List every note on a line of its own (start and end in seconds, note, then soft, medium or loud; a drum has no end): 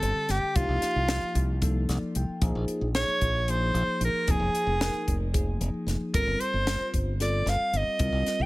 0.00 0.15 G1 medium
0.00 0.56 D3 medium
0.00 0.56 G3 medium
0.00 0.56 C4 medium
0.00 0.56 G4 medium
0.00 0.32 A4 loud
0.00 closed hi-hat medium
0.29 0.42 G1 medium
0.29 0.57 G4 medium
0.29 snare soft
0.29 closed hi-hat medium
0.43 muted fingered electric bass stroke soft
0.56 0.68 C2 medium
0.56 1.01 F3 medium
0.56 1.01 A#3 medium
0.56 1.01 D#4 medium
0.56 1.62 F4 loud
0.56 1.01 G4 medium
0.56 kick loud
0.56 closed hi-hat medium
0.69 0.82 C2 medium
0.82 snare soft
0.82 closed hi-hat medium
0.96 1.21 C2 medium
1.08 1.54 F3 medium
1.08 1.53 A#3 medium
1.08 1.54 D#4 medium
1.08 1.53 G4 medium
1.08 snare medium
1.08 closed hi-hat medium
1.35 1.85 C2 medium
1.35 kick medium
1.35 closed hi-hat medium
1.62 2.42 F3 medium
1.62 2.41 A#3 medium
1.62 2.42 D#4 medium
1.62 2.42 A4 medium
1.62 kick loud
1.62 closed hi-hat medium
1.89 2.01 C2 medium
1.89 2.14 D5 medium
1.89 snare soft
1.89 closed hi-hat medium
2.15 2.28 C2 medium
2.15 2.41 G5 medium
2.15 closed hi-hat medium
2.29 muted fingered electric bass stroke soft
2.41 2.54 A#1 medium
2.41 2.87 F3 medium
2.41 2.87 A#3 medium
2.41 2.87 D#4 medium
2.41 2.87 G#4 loud
2.41 kick loud
2.41 closed hi-hat medium
2.55 2.68 A#1 medium
2.68 closed hi-hat medium
2.81 3.06 A#1 medium
2.95 3.40 F3 medium
2.95 3.40 A#3 medium
2.95 3.40 D#4 medium
2.95 3.41 G#4 medium
2.95 3.52 C#5 loud
2.95 snare medium
2.95 closed hi-hat medium
3.21 3.71 A#1 medium
3.21 kick medium
3.21 closed hi-hat medium
3.48 4.28 F3 medium
3.48 4.28 A#3 medium
3.48 4.28 D#4 medium
3.48 4.27 G#4 medium
3.48 4.02 C5 loud
3.48 closed hi-hat medium
3.74 3.87 A#1 medium
3.74 closed hi-hat medium
4.01 4.12 A#1 medium
4.01 4.32 A#4 medium
4.01 closed hi-hat medium
4.28 4.39 F1 medium
4.28 4.73 F3 medium
4.28 4.73 A#3 medium
4.28 4.73 D#4 medium
4.28 4.73 G#4 medium
4.28 5.36 G#4 medium
4.28 kick loud
4.28 closed hi-hat medium
4.40 4.53 F1 medium
4.54 muted fingered electric bass stroke soft
4.54 closed hi-hat medium
4.67 4.92 F1 medium
4.81 5.26 F3 medium
4.81 5.26 A#3 medium
4.81 5.26 D#4 medium
4.81 5.26 A#4 medium
4.81 snare loud
4.81 closed hi-hat medium
5.08 5.58 F1 medium
5.08 kick medium
5.08 closed hi-hat medium
5.34 6.14 F3 medium
5.34 6.14 A#3 medium
5.34 6.14 D#4 medium
5.34 6.14 G#4 medium
5.34 kick medium
5.34 closed hi-hat medium
5.61 5.73 F1 medium
5.61 closed hi-hat medium
5.74 muted fingered electric bass stroke soft
5.87 5.99 F1 medium
5.87 snare soft
5.87 closed hi-hat medium
6.01 muted fingered electric bass stroke soft
6.14 6.26 G1 medium
6.14 6.59 G3 medium
6.14 6.59 C4 medium
6.14 6.59 F4 medium
6.14 6.59 A4 medium
6.14 6.42 A#4 loud
6.14 kick loud
6.14 closed hi-hat medium
6.27 6.40 G1 medium
6.40 6.94 C5 loud
6.40 closed hi-hat medium
6.54 6.79 G1 medium
6.67 7.12 G3 medium
6.67 7.12 C4 medium
6.67 7.12 F4 medium
6.67 7.12 C5 medium
6.67 snare medium
6.67 closed hi-hat medium
6.94 7.44 G1 medium
6.94 kick medium
6.94 closed hi-hat medium
7.20 7.99 G3 medium
7.20 7.99 C4 medium
7.20 7.99 F4 medium
7.20 8.00 A4 medium
7.20 7.50 D5 medium
7.20 snare soft
7.20 closed hi-hat medium
7.46 7.59 G1 medium
7.46 7.79 F5 medium
7.46 snare soft
7.46 closed hi-hat medium
7.60 muted fingered electric bass stroke soft
7.73 7.86 G1 medium
7.73 closed hi-hat medium
7.77 8.43 D#5 medium
7.99 8.12 C2 medium
7.99 8.45 G3 medium
7.99 8.45 C4 medium
7.99 8.45 F4 medium
7.99 8.45 A#4 medium
7.99 kick loud
7.99 closed hi-hat medium
8.12 8.25 C2 medium
8.27 snare soft
8.27 closed hi-hat medium
8.40 8.46 C2 medium
8.40 8.46 G5 loud